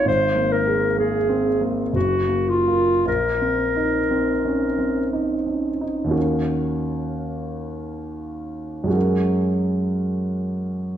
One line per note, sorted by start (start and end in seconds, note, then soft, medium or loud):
0.05 1.90 G#1 soft
0.05 0.54 C5 medium
0.35 0.86 A#3 soft
0.52 0.98 A#4 medium
0.67 1.17 G#4 soft
0.98 1.49 A#3 soft
0.98 1.64 G#4 medium
1.29 1.81 C4 soft
1.61 1.94 A#3 soft
1.93 3.02 F#1 soft
1.93 2.51 F#4 soft
2.29 2.91 A#3 soft
2.49 3.06 F4 soft
2.68 3.02 F4 soft
2.68 3.02 A#4 soft
3.05 6.11 A#1 soft
3.05 5.10 A#4 soft
3.41 3.98 C4 soft
3.76 4.32 D#4 soft
4.11 4.66 C4 soft
4.45 5.00 C#4 soft
4.78 5.33 C4 soft
5.13 5.68 D#4 soft
5.47 5.82 C#4 soft
5.81 6.15 D#4 soft
6.04 8.85 D#2 soft
6.04 8.87 A#3 soft
6.09 8.86 C#4 soft
6.09 8.89 F#4 soft
6.13 8.90 A#4 soft
8.84 10.97 F#2 soft
8.84 10.97 G#3 soft
8.88 10.97 C#4 soft
8.88 10.97 F#4 soft
8.92 10.97 A#4 soft